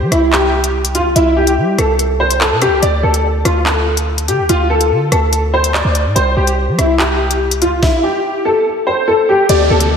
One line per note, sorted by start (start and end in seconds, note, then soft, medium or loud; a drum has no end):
0.01 0.11 G3 loud
0.12 0.96 C2 loud
0.12 0.30 E4 medium
0.12 cross-stick medium
0.12 closed hi-hat medium
0.32 0.91 G4 medium
0.32 clap loud
0.64 closed hi-hat medium
0.85 closed hi-hat medium
0.95 1.07 D2 loud
0.95 1.13 F4 medium
0.95 closed hi-hat medium
1.05 1.15 C2 loud
1.16 1.59 C2 loud
1.16 1.34 E4 loud
1.16 closed hi-hat medium
1.37 1.76 G4 medium
1.47 closed hi-hat medium
1.57 1.77 G3 loud
1.78 2.53 C2 loud
1.78 1.97 A4 medium
1.78 cross-stick medium
1.78 closed hi-hat medium
1.99 closed hi-hat medium
2.20 2.38 C5 medium
2.31 closed hi-hat medium
2.41 2.59 A4 medium
2.41 clap loud
2.51 2.68 C3 loud
2.62 2.80 G4 medium
2.62 cross-stick loud
2.62 closed hi-hat medium
2.67 2.82 C2 loud
2.82 3.03 D2 loud
2.82 3.01 D5 medium
2.82 closed hi-hat medium
3.03 3.43 D2 loud
3.03 3.21 A4 medium
3.14 closed hi-hat medium
3.45 4.30 D2 loud
3.45 3.63 F4 medium
3.45 cross-stick medium
3.45 closed hi-hat medium
3.66 4.24 A4 medium
3.66 clap loud
3.97 closed hi-hat medium
4.18 closed hi-hat medium
4.28 4.40 D3 loud
4.28 4.47 G4 medium
4.28 closed hi-hat medium
4.39 4.49 D2 medium
4.49 4.92 D2 loud
4.49 4.67 F4 loud
4.49 closed hi-hat medium
4.70 5.09 A4 medium
4.81 closed hi-hat medium
4.91 5.11 D3 loud
5.12 5.82 D2 loud
5.12 5.51 A4 medium
5.12 cross-stick medium
5.12 closed hi-hat medium
5.33 closed hi-hat medium
5.54 5.72 C5 medium
5.64 closed hi-hat medium
5.74 6.13 D5 medium
5.74 clap loud
5.85 6.07 D2 loud
5.95 closed hi-hat medium
6.06 6.15 A2 loud
6.16 6.36 C2 loud
6.16 6.34 C5 medium
6.16 closed hi-hat medium
6.37 6.70 C2 loud
6.37 6.55 G4 medium
6.47 closed hi-hat medium
6.68 6.78 G3 loud
6.78 7.63 C2 loud
6.78 6.97 E4 medium
6.78 cross-stick medium
6.78 closed hi-hat medium
6.99 7.58 G4 medium
6.99 clap loud
7.31 closed hi-hat medium
7.51 closed hi-hat medium
7.62 7.74 D2 loud
7.62 7.80 F4 medium
7.62 closed hi-hat medium
7.72 7.82 C2 loud
7.82 8.01 E4 loud
7.82 kick loud
7.82 snare medium
8.03 8.43 G4 medium
8.45 8.63 A4 medium
8.87 9.05 C5 medium
9.08 9.26 A4 medium
9.29 9.47 G4 medium
9.49 9.69 D2 loud
9.49 9.67 D5 medium
9.49 closed hi-hat medium
9.49 downlifter medium
9.70 9.97 D2 loud
9.70 9.88 A4 medium
9.80 closed hi-hat medium